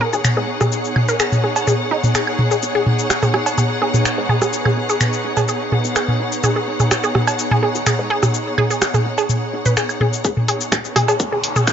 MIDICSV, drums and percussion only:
0, 0, Header, 1, 2, 480
1, 0, Start_track
1, 0, Key_signature, 5, "minor"
1, 0, Tempo, 476190
1, 728, Time_signature, 4, 2, 24, 8
1, 11823, End_track
2, 0, Start_track
2, 0, Title_t, "Drums"
2, 133, Note_on_c, 9, 69, 34
2, 233, Note_off_c, 9, 69, 0
2, 247, Note_on_c, 9, 48, 44
2, 248, Note_on_c, 9, 26, 88
2, 248, Note_on_c, 9, 69, 49
2, 347, Note_off_c, 9, 48, 0
2, 348, Note_off_c, 9, 26, 0
2, 348, Note_off_c, 9, 69, 0
2, 612, Note_on_c, 9, 37, 56
2, 612, Note_on_c, 9, 48, 42
2, 613, Note_on_c, 9, 69, 35
2, 713, Note_off_c, 9, 37, 0
2, 713, Note_off_c, 9, 48, 0
2, 714, Note_off_c, 9, 69, 0
2, 727, Note_on_c, 9, 69, 45
2, 828, Note_off_c, 9, 69, 0
2, 853, Note_on_c, 9, 69, 26
2, 954, Note_off_c, 9, 69, 0
2, 967, Note_on_c, 9, 48, 44
2, 967, Note_on_c, 9, 76, 58
2, 1068, Note_off_c, 9, 48, 0
2, 1068, Note_off_c, 9, 76, 0
2, 1093, Note_on_c, 9, 69, 37
2, 1194, Note_off_c, 9, 69, 0
2, 1207, Note_on_c, 9, 26, 82
2, 1207, Note_on_c, 9, 69, 46
2, 1308, Note_off_c, 9, 26, 0
2, 1308, Note_off_c, 9, 69, 0
2, 1333, Note_on_c, 9, 48, 41
2, 1333, Note_on_c, 9, 69, 26
2, 1433, Note_off_c, 9, 48, 0
2, 1434, Note_off_c, 9, 69, 0
2, 1573, Note_on_c, 9, 56, 73
2, 1573, Note_on_c, 9, 69, 36
2, 1673, Note_off_c, 9, 56, 0
2, 1674, Note_off_c, 9, 69, 0
2, 1687, Note_on_c, 9, 48, 41
2, 1687, Note_on_c, 9, 69, 43
2, 1788, Note_off_c, 9, 48, 0
2, 1788, Note_off_c, 9, 69, 0
2, 2052, Note_on_c, 9, 48, 42
2, 2053, Note_on_c, 9, 69, 36
2, 2153, Note_off_c, 9, 48, 0
2, 2153, Note_off_c, 9, 69, 0
2, 2166, Note_on_c, 9, 26, 89
2, 2166, Note_on_c, 9, 69, 48
2, 2267, Note_off_c, 9, 26, 0
2, 2267, Note_off_c, 9, 69, 0
2, 2292, Note_on_c, 9, 76, 59
2, 2393, Note_off_c, 9, 76, 0
2, 2407, Note_on_c, 9, 48, 43
2, 2508, Note_off_c, 9, 48, 0
2, 2532, Note_on_c, 9, 69, 34
2, 2633, Note_off_c, 9, 69, 0
2, 2647, Note_on_c, 9, 69, 44
2, 2748, Note_off_c, 9, 69, 0
2, 2887, Note_on_c, 9, 48, 42
2, 2987, Note_off_c, 9, 48, 0
2, 3013, Note_on_c, 9, 69, 36
2, 3113, Note_off_c, 9, 69, 0
2, 3126, Note_on_c, 9, 37, 53
2, 3127, Note_on_c, 9, 26, 81
2, 3127, Note_on_c, 9, 69, 47
2, 3227, Note_off_c, 9, 37, 0
2, 3228, Note_off_c, 9, 26, 0
2, 3228, Note_off_c, 9, 69, 0
2, 3251, Note_on_c, 9, 48, 40
2, 3252, Note_on_c, 9, 69, 26
2, 3352, Note_off_c, 9, 48, 0
2, 3353, Note_off_c, 9, 69, 0
2, 3366, Note_on_c, 9, 37, 57
2, 3366, Note_on_c, 9, 76, 61
2, 3467, Note_off_c, 9, 37, 0
2, 3467, Note_off_c, 9, 76, 0
2, 3490, Note_on_c, 9, 56, 70
2, 3493, Note_on_c, 9, 69, 36
2, 3590, Note_off_c, 9, 56, 0
2, 3594, Note_off_c, 9, 69, 0
2, 3607, Note_on_c, 9, 48, 42
2, 3607, Note_on_c, 9, 69, 45
2, 3707, Note_off_c, 9, 48, 0
2, 3708, Note_off_c, 9, 69, 0
2, 3972, Note_on_c, 9, 48, 42
2, 3973, Note_on_c, 9, 69, 35
2, 4073, Note_off_c, 9, 48, 0
2, 4074, Note_off_c, 9, 69, 0
2, 4087, Note_on_c, 9, 26, 87
2, 4087, Note_on_c, 9, 69, 49
2, 4188, Note_off_c, 9, 26, 0
2, 4188, Note_off_c, 9, 69, 0
2, 4327, Note_on_c, 9, 48, 42
2, 4427, Note_off_c, 9, 48, 0
2, 4453, Note_on_c, 9, 37, 58
2, 4453, Note_on_c, 9, 69, 36
2, 4553, Note_off_c, 9, 37, 0
2, 4554, Note_off_c, 9, 69, 0
2, 4567, Note_on_c, 9, 69, 47
2, 4668, Note_off_c, 9, 69, 0
2, 4692, Note_on_c, 9, 48, 39
2, 4692, Note_on_c, 9, 76, 63
2, 4793, Note_off_c, 9, 48, 0
2, 4793, Note_off_c, 9, 76, 0
2, 4933, Note_on_c, 9, 69, 39
2, 5034, Note_off_c, 9, 69, 0
2, 5047, Note_on_c, 9, 26, 81
2, 5047, Note_on_c, 9, 48, 39
2, 5047, Note_on_c, 9, 69, 48
2, 5148, Note_off_c, 9, 26, 0
2, 5148, Note_off_c, 9, 48, 0
2, 5148, Note_off_c, 9, 69, 0
2, 5173, Note_on_c, 9, 69, 27
2, 5274, Note_off_c, 9, 69, 0
2, 5412, Note_on_c, 9, 48, 39
2, 5412, Note_on_c, 9, 56, 73
2, 5412, Note_on_c, 9, 69, 37
2, 5513, Note_off_c, 9, 48, 0
2, 5513, Note_off_c, 9, 56, 0
2, 5513, Note_off_c, 9, 69, 0
2, 5526, Note_on_c, 9, 69, 46
2, 5627, Note_off_c, 9, 69, 0
2, 5766, Note_on_c, 9, 48, 38
2, 5867, Note_off_c, 9, 48, 0
2, 5892, Note_on_c, 9, 69, 35
2, 5993, Note_off_c, 9, 69, 0
2, 6007, Note_on_c, 9, 26, 85
2, 6007, Note_on_c, 9, 69, 49
2, 6007, Note_on_c, 9, 76, 62
2, 6107, Note_off_c, 9, 76, 0
2, 6108, Note_off_c, 9, 26, 0
2, 6108, Note_off_c, 9, 69, 0
2, 6132, Note_on_c, 9, 48, 40
2, 6232, Note_off_c, 9, 48, 0
2, 6373, Note_on_c, 9, 69, 37
2, 6474, Note_off_c, 9, 69, 0
2, 6487, Note_on_c, 9, 48, 37
2, 6487, Note_on_c, 9, 69, 48
2, 6587, Note_off_c, 9, 48, 0
2, 6588, Note_off_c, 9, 69, 0
2, 6852, Note_on_c, 9, 48, 39
2, 6853, Note_on_c, 9, 69, 40
2, 6953, Note_off_c, 9, 48, 0
2, 6954, Note_off_c, 9, 69, 0
2, 6967, Note_on_c, 9, 26, 81
2, 6967, Note_on_c, 9, 37, 60
2, 6967, Note_on_c, 9, 69, 50
2, 7068, Note_off_c, 9, 26, 0
2, 7068, Note_off_c, 9, 37, 0
2, 7068, Note_off_c, 9, 69, 0
2, 7094, Note_on_c, 9, 69, 28
2, 7194, Note_off_c, 9, 69, 0
2, 7207, Note_on_c, 9, 37, 63
2, 7207, Note_on_c, 9, 48, 41
2, 7308, Note_off_c, 9, 37, 0
2, 7308, Note_off_c, 9, 48, 0
2, 7333, Note_on_c, 9, 56, 74
2, 7333, Note_on_c, 9, 76, 67
2, 7334, Note_on_c, 9, 69, 41
2, 7434, Note_off_c, 9, 56, 0
2, 7434, Note_off_c, 9, 76, 0
2, 7435, Note_off_c, 9, 69, 0
2, 7449, Note_on_c, 9, 69, 48
2, 7550, Note_off_c, 9, 69, 0
2, 7572, Note_on_c, 9, 48, 40
2, 7673, Note_off_c, 9, 48, 0
2, 7814, Note_on_c, 9, 69, 37
2, 7915, Note_off_c, 9, 69, 0
2, 7927, Note_on_c, 9, 48, 40
2, 7928, Note_on_c, 9, 26, 87
2, 7928, Note_on_c, 9, 69, 51
2, 8028, Note_off_c, 9, 48, 0
2, 8029, Note_off_c, 9, 26, 0
2, 8029, Note_off_c, 9, 69, 0
2, 8293, Note_on_c, 9, 37, 63
2, 8293, Note_on_c, 9, 48, 38
2, 8295, Note_on_c, 9, 69, 38
2, 8394, Note_off_c, 9, 37, 0
2, 8394, Note_off_c, 9, 48, 0
2, 8395, Note_off_c, 9, 69, 0
2, 8409, Note_on_c, 9, 69, 52
2, 8510, Note_off_c, 9, 69, 0
2, 8647, Note_on_c, 9, 48, 40
2, 8647, Note_on_c, 9, 76, 64
2, 8748, Note_off_c, 9, 48, 0
2, 8748, Note_off_c, 9, 76, 0
2, 8775, Note_on_c, 9, 69, 40
2, 8875, Note_off_c, 9, 69, 0
2, 8887, Note_on_c, 9, 37, 59
2, 8888, Note_on_c, 9, 26, 89
2, 8888, Note_on_c, 9, 69, 50
2, 8988, Note_off_c, 9, 37, 0
2, 8989, Note_off_c, 9, 26, 0
2, 8989, Note_off_c, 9, 69, 0
2, 9013, Note_on_c, 9, 48, 40
2, 9015, Note_on_c, 9, 69, 28
2, 9114, Note_off_c, 9, 48, 0
2, 9116, Note_off_c, 9, 69, 0
2, 9252, Note_on_c, 9, 56, 78
2, 9254, Note_on_c, 9, 69, 39
2, 9353, Note_off_c, 9, 56, 0
2, 9355, Note_off_c, 9, 69, 0
2, 9368, Note_on_c, 9, 48, 39
2, 9369, Note_on_c, 9, 69, 50
2, 9468, Note_off_c, 9, 48, 0
2, 9470, Note_off_c, 9, 69, 0
2, 9734, Note_on_c, 9, 48, 40
2, 9734, Note_on_c, 9, 69, 38
2, 9834, Note_off_c, 9, 69, 0
2, 9835, Note_off_c, 9, 48, 0
2, 9848, Note_on_c, 9, 26, 94
2, 9848, Note_on_c, 9, 69, 51
2, 9949, Note_off_c, 9, 26, 0
2, 9949, Note_off_c, 9, 69, 0
2, 9972, Note_on_c, 9, 76, 62
2, 9974, Note_on_c, 9, 69, 27
2, 10073, Note_off_c, 9, 76, 0
2, 10074, Note_off_c, 9, 69, 0
2, 10086, Note_on_c, 9, 48, 40
2, 10187, Note_off_c, 9, 48, 0
2, 10213, Note_on_c, 9, 69, 41
2, 10314, Note_off_c, 9, 69, 0
2, 10327, Note_on_c, 9, 36, 108
2, 10328, Note_on_c, 9, 69, 52
2, 10428, Note_off_c, 9, 36, 0
2, 10428, Note_off_c, 9, 69, 0
2, 10452, Note_on_c, 9, 48, 41
2, 10553, Note_off_c, 9, 48, 0
2, 10567, Note_on_c, 9, 46, 83
2, 10668, Note_off_c, 9, 46, 0
2, 10693, Note_on_c, 9, 69, 41
2, 10794, Note_off_c, 9, 69, 0
2, 10806, Note_on_c, 9, 37, 60
2, 10807, Note_on_c, 9, 36, 112
2, 10808, Note_on_c, 9, 26, 90
2, 10808, Note_on_c, 9, 69, 52
2, 10906, Note_off_c, 9, 37, 0
2, 10908, Note_off_c, 9, 36, 0
2, 10909, Note_off_c, 9, 26, 0
2, 10909, Note_off_c, 9, 69, 0
2, 10933, Note_on_c, 9, 69, 30
2, 11034, Note_off_c, 9, 69, 0
2, 11046, Note_on_c, 9, 37, 65
2, 11046, Note_on_c, 9, 48, 42
2, 11046, Note_on_c, 9, 76, 65
2, 11047, Note_on_c, 9, 46, 85
2, 11147, Note_off_c, 9, 37, 0
2, 11147, Note_off_c, 9, 48, 0
2, 11147, Note_off_c, 9, 76, 0
2, 11148, Note_off_c, 9, 46, 0
2, 11172, Note_on_c, 9, 56, 78
2, 11173, Note_on_c, 9, 69, 39
2, 11273, Note_off_c, 9, 56, 0
2, 11274, Note_off_c, 9, 69, 0
2, 11287, Note_on_c, 9, 36, 114
2, 11288, Note_on_c, 9, 69, 51
2, 11388, Note_off_c, 9, 36, 0
2, 11388, Note_off_c, 9, 69, 0
2, 11527, Note_on_c, 9, 46, 91
2, 11628, Note_off_c, 9, 46, 0
2, 11651, Note_on_c, 9, 48, 44
2, 11653, Note_on_c, 9, 69, 39
2, 11752, Note_off_c, 9, 48, 0
2, 11754, Note_off_c, 9, 69, 0
2, 11767, Note_on_c, 9, 26, 96
2, 11767, Note_on_c, 9, 36, 115
2, 11767, Note_on_c, 9, 69, 56
2, 11823, Note_off_c, 9, 26, 0
2, 11823, Note_off_c, 9, 36, 0
2, 11823, Note_off_c, 9, 69, 0
2, 11823, End_track
0, 0, End_of_file